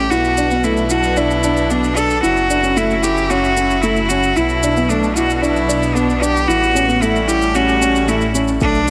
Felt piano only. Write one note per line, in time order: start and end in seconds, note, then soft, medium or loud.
0.11 0.26 E4 medium
0.38 0.45 D4 medium
0.51 0.58 B3 medium
0.64 0.79 A3 medium
0.91 1.05 E4 medium
1.17 1.32 D4 medium
1.44 1.59 D4 medium
1.70 1.85 B3 medium
1.96 2.11 D4 medium
2.23 2.38 E4 medium
2.50 2.58 D4 medium
2.63 2.71 C#4 medium
2.77 2.91 A3 medium
3.03 3.18 E4 medium
3.30 3.45 C#4 medium
3.56 3.71 C#4 medium
3.83 3.98 A3 medium
4.10 4.25 C#4 medium
4.36 4.51 E4 loud
4.63 4.70 D4 medium
4.77 4.84 B3 medium
4.89 5.04 A3 medium
5.16 5.31 E4 medium
5.42 5.57 D4 medium
5.69 5.83 D4 medium
5.95 6.10 B3 medium
6.21 6.36 D4 medium
6.48 6.63 E4 loud
6.75 6.82 C#4 medium
6.88 6.96 B3 medium
7.02 7.16 A3 medium
7.28 7.43 E4 medium
7.55 7.69 C#4 medium
7.81 7.96 C#4 medium
8.08 8.23 A3 medium
8.35 8.49 C#4 medium
8.61 8.76 A3 loud